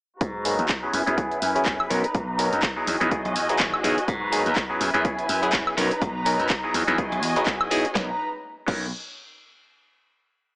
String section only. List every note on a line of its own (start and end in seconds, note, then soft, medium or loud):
0.21 0.93 F#4 medium
0.21 2.84 B4 medium
0.21 0.93 A#5 medium
0.93 1.89 E4 medium
0.93 1.89 G#5 medium
1.91 2.86 D#4 medium
1.91 2.86 A#5 medium
2.87 4.79 F#4 medium
2.87 4.07 D#5 medium
2.87 4.07 G#5 medium
4.08 4.79 B4 medium
4.08 4.80 A#5 medium
4.80 5.76 E4 medium
4.80 5.76 B4 medium
4.80 5.76 G#5 medium
5.77 6.73 D#4 medium
5.77 6.73 B4 medium
5.77 6.73 A#5 medium
6.74 7.94 F#4 medium
6.74 7.94 D#5 medium
6.74 7.94 G#5 medium
7.95 8.18 D#4 medium
7.95 8.18 B4 medium
7.95 8.18 A#5 medium